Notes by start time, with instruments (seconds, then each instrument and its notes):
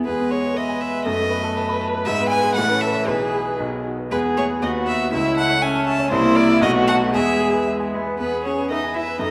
0.05 grand piano E2, cello G#3, viola G#4, violin B4
0.20 grand piano B3
0.31 grand piano G#4, violin C#5
0.45 grand piano B4
0.56 viola B4, violin D#5, grand piano E5
0.69 grand piano G#5
0.81 violin E5, grand piano E5
0.95 grand piano B4
1.05 grand piano F#2, cello A3, viola A4, violin D#5
1.20 grand piano B3
1.30 viola B4, grand piano B4
1.43 grand piano A4
1.57 grand piano A5
1.69 grand piano B5
1.81 grand piano A5
1.95 grand piano B4
2.05 grand piano G#2, cello G#3, violin E5
2.19 grand piano B3
2.30 grand piano B4, violin G#5
2.43 grand piano G#4
2.55 grand piano A2, cello E3, violin F#5
2.70 grand piano C#4
2.81 grand piano A4, violin E5
2.95 grand piano C#5
3.06 grand piano B1, viola G#4, violin B4
3.21 grand piano B3
3.35 grand piano G#4
3.47 grand piano B4
3.58 grand piano B1, cello D#3
3.72 grand piano B3
3.85 grand piano F#4
3.99 grand piano B4
4.10 grand piano E2, cello G#3, viola G#4, violin B4
4.25 grand piano B3
4.37 cello A3, grand piano G#4, violin C#5
4.50 grand piano B4
4.62 grand piano D#2, cello B3, viola F#4, violin D#5
4.75 grand piano B3
4.87 grand piano B4, violin E5
5.00 grand piano F#4
5.12 grand piano C#2, cello A3, viola E4, violin E5
5.25 grand piano C#4
5.37 grand piano A4, violin F#5
5.50 grand piano C#5
5.62 viola C#4, grand piano E5, violin G#5
5.75 grand piano A5
5.87 grand piano E5, violin A5
5.99 grand piano C#5
6.12 grand piano C2, cello A#3, viola E4, violin C5
6.23 grand piano A#3
6.35 grand piano A#4, violin D5
6.48 grand piano E4
6.61 grand piano B1, cello A3, viola F#4, violin D#5
6.74 grand piano B3
6.87 grand piano A4, violin F#5
7.01 grand piano B4
7.14 grand piano E2, cello G#3, viola G#4, violin E5
7.28 grand piano B3
7.40 grand piano G#4
7.54 grand piano B4
7.67 cello G#3, grand piano E5
7.80 grand piano G#5
7.94 cello B3, grand piano E5
8.07 grand piano B4
8.18 grand piano E2, cello B3, viola G#4, violin B4
8.33 grand piano B3
8.45 cello C#4, grand piano G#4, violin C#5
8.59 grand piano B4
8.70 cello D#4, viola B4, violin D#5, grand piano E5
8.84 grand piano G#5
8.95 cello E4, grand piano E5, violin E5
9.08 grand piano B4
9.19 grand piano F#2, cello D#4, viola A4, violin D#5